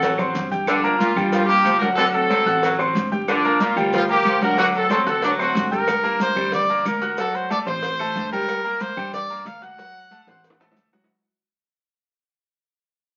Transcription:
Already playing: upright bass A1, horn section C4 A4, grand piano F#4 F#5 F#6
0.02 saxophone section F#3, cowbell, low conga, maracas
0.18 grand piano C4 C5 C6, low conga, claves, maracas
0.35 upright bass G1, cowbell, low conga, maracas
0.51 grand piano G4 G5 G6, low conga, maracas
0.67 saxophone section D3, horn section F3 D4, cowbell, high conga, claves, maracas
0.84 grand piano A#3 A#4 A#5, high conga, maracas
0.99 saxophone section A#2, horn section A#3 F4, cowbell, high conga, maracas
1.16 upright bass G2, grand piano G3 G4 G5, high conga, low conga, claves, maracas
1.31 saxophone section F3, horn section A#3 F4, cowbell, high conga, maracas
1.46 horn section A#3 G4, grand piano A#3 A#4 A#5, high conga, maracas
1.64 upright bass D2, saxophone section F3, cowbell, high conga, claves, maracas
1.79 grand piano F#3 F#4 F#5, horn section D4 A#4, cowbell, high conga, maracas
1.96 saxophone section D3, grand piano F#3 F#4 F#5, horn section C4 A4, cowbell, high conga, maracas
2.13 horn section C4 A4, high conga, maracas
2.30 saxophone section F#3, grand piano C4 C5 C6, cowbell, high conga, claves, maracas
2.46 upright bass A1, grand piano F#4 F#5 F#6, cowbell, high conga, maracas
2.63 saxophone section F#3, cowbell, high conga, maracas
2.79 grand piano C4 C5 C6, high conga, claves, maracas
2.95 upright bass G1, cowbell, high conga, maracas
3.12 grand piano G4 G5 G6, high conga, maracas
3.28 saxophone section D3, horn section F3 D4, cowbell, high conga, claves, maracas
3.44 grand piano A#3 A#4 A#5, high conga, maracas
3.60 saxophone section A#2, horn section A#3 F4, cowbell, high conga, maracas
3.76 upright bass D2, grand piano G3 G4 G5, high conga, low conga, claves, maracas
3.93 saxophone section F3, horn section A#3 F4, cowbell, high conga, low conga, maracas
4.09 grand piano A#3 A#4 A#5, horn section A#3 G4, high conga, maracas
4.25 upright bass D2, saxophone section F3, cowbell, high conga, claves, maracas
4.41 grand piano F#3 F#4 F#5, horn section D4 A#4, cowbell, high conga, maracas
4.57 saxophone section D3, grand piano F#3 F#4 F#5, horn section A3 F#4, cowbell, high conga, maracas
4.74 horn section C4 A4, high conga, maracas
4.90 saxophone section F#3, grand piano C4 C5 C6, horn section C4 A4, cowbell, high conga, claves, maracas
5.06 upright bass D2, horn section C4 A4, grand piano F#4 F#5 F#6, cowbell, high conga, maracas
5.22 horn section F#3 D4, saxophone section F#3, cowbell, high conga, maracas
5.39 horn section A3 F#4, grand piano C4 C5 C6, high conga, claves, maracas
5.55 upright bass G1, cowbell, high conga, maracas
5.71 grand piano G4 G5 G6, trumpet A#4, high conga, maracas
5.87 upright bass G1, cowbell, high conga, claves, maracas
6.04 grand piano A#3 A#4 A#5, high conga, maracas
6.20 trumpet C5, cowbell, high conga, maracas
6.36 upright bass D2, grand piano G3 G4 G5, high conga, low conga, claves, maracas
6.52 trumpet D5, cowbell, high conga, low conga, maracas
6.69 grand piano A#3 A#4 A#5, high conga, maracas
6.85 upright bass D2, trumpet A#4, cowbell, high conga, claves, maracas
7.02 grand piano F#4 F#5 F#6, cowbell, maracas
7.18 grand piano F#3 F#4 F#5, trumpet A4, cowbell, high conga, maracas
7.34 trumpet C5, high conga, maracas
7.50 grand piano A3 A4 A5, trumpet D5, cowbell, high conga, claves, maracas
7.66 upright bass A1, grand piano C4 C5 C6, trumpet C5, cowbell, high conga, maracas
7.83 cowbell, high conga, maracas
7.99 grand piano A3 A4 A5, high conga, claves, maracas
8.15 upright bass G1, cowbell, high conga, maracas
8.32 grand piano G3 G4 G5, trumpet A#4, high conga, maracas
8.48 cowbell, claves, maracas
8.64 grand piano A#3 A#4 A#5, high conga, maracas
8.80 trumpet C5, cowbell, high conga, maracas
8.97 upright bass G2, grand piano G3 G4 G5, high conga, low conga, claves, maracas
9.13 trumpet D5, cowbell, high conga, low conga, maracas
9.30 grand piano A#3 A#4 A#5, high conga, maracas
9.45 upright bass D2, trumpet F5, cowbell, high conga, claves, maracas
9.62 grand piano F#4 F#5 F#6, trumpet F#5, cowbell, high conga, maracas
9.78 grand piano F#3 F#4 F#5, cowbell, high conga, maracas
9.95 high conga, maracas
10.11 grand piano A3 A4 A5, cowbell, high conga, claves, maracas
10.27 upright bass A1, grand piano C4 C5 C6, cowbell, high bongo, high conga, maracas
10.44 cowbell, high conga, maracas
10.50 high bongo
10.60 grand piano A3 A4 A5, low bongo, high conga, claves, maracas
10.72 low bongo
10.76 upright bass D2, cowbell, high conga, maracas
10.93 grand piano F#3 F#4 F#5, low bongo, high conga
11.04 low bongo

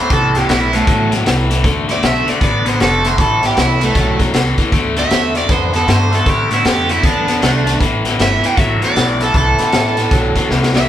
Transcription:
0.00 overdriven electric guitar C5
0.10 upright bass C2, overdriven electric guitar A2 E3 A4, kick, snare, closed hi-hat
0.34 overdriven electric guitar A2 E3 G4, snare, closed hi-hat
0.48 upright bass B1, overdriven electric guitar A2 E3 E4, snare, closed hi-hat
0.72 overdriven electric guitar A2 E3 A3, snare, closed hi-hat
0.87 upright bass A1, overdriven electric guitar A2 F#3, kick, snare, closed hi-hat
1.11 overdriven electric guitar A2 F#3, snare, closed hi-hat
1.25 upright bass C2, overdriven electric guitar A2 E3, snare, closed hi-hat
1.50 overdriven electric guitar A2 E3, snare, closed hi-hat
1.64 upright bass D2, overdriven electric guitar D3 A3, kick, snare, closed hi-hat
1.88 overdriven electric guitar D3 A3 D5, snare, closed hi-hat
2.02 upright bass B1, overdriven electric guitar D3 A3 E5, snare, closed hi-hat
2.26 overdriven electric guitar D3 A3 D5, muted upright bass stroke, snare, closed hi-hat
2.41 upright bass A1, overdriven electric guitar D3 B3 D5, kick, snare, closed hi-hat
2.65 overdriven electric guitar D3 B3 C5, snare, closed hi-hat
2.80 upright bass F1, overdriven electric guitar D3 A3 A4, snare, closed hi-hat
3.04 overdriven electric guitar D3 A3 C5, snare, closed hi-hat
3.18 upright bass A1, overdriven electric guitar A2 E3 A4, kick, snare, closed hi-hat
3.42 overdriven electric guitar A2 E3 G4, snare, closed hi-hat
3.56 upright bass C2, overdriven electric guitar A2 E3 E4, snare, closed hi-hat
3.80 overdriven electric guitar A2 E3 A3, snare, closed hi-hat
3.95 upright bass B1, overdriven electric guitar A2 F#3, kick, snare, closed hi-hat
4.19 overdriven electric guitar A2 F#3, kick, snare, closed hi-hat
4.33 upright bass C2, overdriven electric guitar A2 E3, snare, closed hi-hat
4.58 overdriven electric guitar A2 E3, kick, snare, closed hi-hat
4.72 upright bass D2, overdriven electric guitar D3 A3, kick, snare, closed hi-hat
4.96 overdriven electric guitar D3 A3 E5, snare, closed hi-hat
5.10 upright bass E2, overdriven electric guitar D3 A3, snare, closed hi-hat
5.35 overdriven electric guitar D3 A3 D5, snare, closed hi-hat
5.48 upright bass F2, overdriven electric guitar D3 B3 C5, kick, snare, closed hi-hat
5.73 overdriven electric guitar D3 B3 A4, snare, closed hi-hat
5.87 upright bass G2, overdriven electric guitar D3 A3 C5, snare, closed hi-hat
6.12 overdriven electric guitar D3 A3 A4, snare, closed hi-hat
6.26 upright bass A2, overdriven electric guitar D3 A3 G4, kick, snare, closed hi-hat
6.51 overdriven electric guitar D3 A3 E4, snare, closed hi-hat
6.64 upright bass F2, overdriven electric guitar D3 A3 G4, snare, closed hi-hat
6.89 overdriven electric guitar D3 A3 E4, snare, closed hi-hat
7.03 upright bass E2, overdriven electric guitar D3 B3 D4, kick, snare, closed hi-hat
7.27 overdriven electric guitar D3 B3, snare, closed hi-hat
7.42 upright bass C2, overdriven electric guitar D3 A3, snare, closed hi-hat
7.66 overdriven electric guitar D3 A3, snare, closed hi-hat
7.80 upright bass A1, overdriven electric guitar A2 E3, kick, snare, closed hi-hat
8.05 overdriven electric guitar A2 E3, snare, closed hi-hat
8.18 upright bass G1, overdriven electric guitar A2 E3 E5, snare, closed hi-hat
8.43 overdriven electric guitar A2 E3 G5, muted upright bass stroke, snare, closed hi-hat
8.56 upright bass A1, overdriven electric guitar A2 F#3 E5, kick, snare, closed hi-hat
8.81 overdriven electric guitar A2 F#3 D5, muted upright bass stroke, snare, closed hi-hat
8.95 upright bass B1, overdriven electric guitar A2 E3, snare, closed hi-hat
9.20 overdriven electric guitar A2 E3 A4, snare, closed hi-hat
9.34 upright bass C2, overdriven electric guitar A2 E3 A4, kick, snare, closed hi-hat
9.58 overdriven electric guitar A2 E3, snare, closed hi-hat
9.72 upright bass A1, overdriven electric guitar A2 E3, snare, closed hi-hat
9.97 overdriven electric guitar A2 E3, snare, closed hi-hat
10.11 upright bass B1, overdriven electric guitar A2 F#3, kick, snare, closed hi-hat
10.36 overdriven electric guitar A2 F#3, muted upright bass stroke, kick, snare, closed hi-hat
10.50 upright bass C2, overdriven electric guitar A2 E3, snare
10.63 snare
10.74 overdriven electric guitar A2 E3 E5, snare

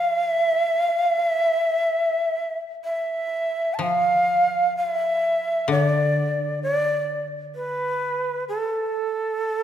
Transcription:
Already playing: koto E3, shakuhachi F5
0.25 shakuhachi E5
0.83 shakuhachi F5
1.17 shakuhachi E5
2.84 shakuhachi E5
3.74 shakuhachi A5
3.79 koto F3, shakuhachi F5
4.77 shakuhachi E5
5.68 koto D3, shakuhachi D5
6.63 shakuhachi D5
7.55 shakuhachi B4
8.49 shakuhachi A4

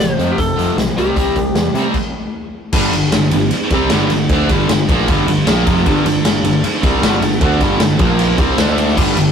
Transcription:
Already playing: tonewheel organ F3 C4 G4
0.00 picked electric bass A1, overdriven electric guitar F2 C3, lead electric guitar C5
0.16 overdriven electric guitar F2, picked electric bass F2, closed hi-hat
0.21 overdriven electric guitar F2 C3 F3
0.32 lead electric guitar G4
0.38 picked electric bass F1, overdriven electric guitar F2 C3, lead electric guitar A4, kick, closed hi-hat
0.57 picked electric bass F1, overdriven electric guitar F2 C3 F3, closed hi-hat
0.76 picked electric bass B1, overdriven electric guitar F2 C3, snare, closed hi-hat
0.95 picked electric bass C2, overdriven electric guitar C3 G3 C4, lead electric guitar G4, tonewheel organ D5, closed hi-hat
1.16 picked electric bass C2, overdriven electric guitar C3 G3 C4, kick, closed hi-hat
1.36 picked electric bass C2, overdriven electric guitar C3 G3, kick, closed hi-hat
1.55 picked electric bass E2, overdriven electric guitar C3 G3, snare, closed hi-hat
1.74 picked electric bass C3, overdriven electric guitar C3 G3 C4, closed hi-hat
1.94 kick, crash
2.73 picked electric bass G1, overdriven electric guitar G2 D3 G3, kick, crash
2.93 picked electric bass G1, overdriven electric guitar G2 D3, ride
3.12 picked electric bass G1, overdriven electric guitar G2 D3, snare, ride
3.31 picked electric bass G1, overdriven electric guitar G2 D3, ride
3.51 muted picked electric bass stroke, muted overdriven electric guitar stroke, muted distorted electric guitar stroke, ride
3.70 picked electric bass C2, overdriven electric guitar C3 G3 C4, kick, ride
3.90 picked electric bass G1, overdriven electric guitar G2 D3 G3, snare, ride
4.10 picked electric bass G1, overdriven electric guitar G2 D3, snare, ride
4.29 picked electric bass D2, overdriven electric guitar D3 A3 D4, kick, ride
4.49 picked electric bass G1, overdriven electric guitar G2 D3 G3, kick, ride
4.68 picked electric bass G1, overdriven electric guitar G2 D3, snare, ride
4.89 picked electric bass A#1, overdriven electric guitar A#2 F3 A#3, kick, ride
5.08 picked electric bass G1, overdriven electric guitar G2 D3 G3, kick, ride
5.26 picked electric bass G1, overdriven electric guitar G2 D3, ride
5.46 picked electric bass A#1, overdriven electric guitar A#2 F3 A#3, snare, ride
5.66 picked electric bass F1, overdriven electric guitar F2 C3 F3, kick, ride
5.77 snare
5.85 picked electric bass G1, overdriven electric guitar G2 D3 G3, tonewheel organ G3 D4 A4, kick, ride
6.05 picked electric bass G1, overdriven electric guitar G2 D3, ride
6.25 picked electric bass G1, overdriven electric guitar G2 D3, snare, ride
6.44 picked electric bass G1, overdriven electric guitar G2 D3, ride
6.64 muted picked electric bass stroke, muted distorted electric guitar stroke, muted overdriven electric guitar stroke, ride
6.83 picked electric bass C2, overdriven electric guitar C3 G3 C4, kick, ride
7.02 picked electric bass G1, overdriven electric guitar G2 D3 G3, snare, ride
7.21 picked electric bass G1, overdriven electric guitar G2 D3, snare, ride
7.32 snare
7.41 picked electric bass D2, overdriven electric guitar D3 A3 D4, kick, ride
7.60 picked electric bass G1, overdriven electric guitar G2 D3 G3, kick, ride
7.80 picked electric bass G1, overdriven electric guitar G2 D3, snare, ride
7.99 picked electric bass A#1, overdriven electric guitar A#2 F3 A#3, tonewheel organ A#3 F4 C5, kick, ride
8.19 ride
8.38 picked electric bass C2, overdriven electric guitar C3 G3 C4, tonewheel organ G3 D4 A4, kick, ride
8.56 picked electric bass D2, overdriven electric guitar D3 A3, tonewheel organ A4 E5, snare, ride
8.60 overdriven electric guitar D4
8.78 ride
8.88 snare
8.96 picked electric bass G1, overdriven electric guitar G2 D3 G3, tonewheel organ G3 D4 A4, kick, crash
9.16 picked electric bass G1, overdriven electric guitar G2 D3, ride

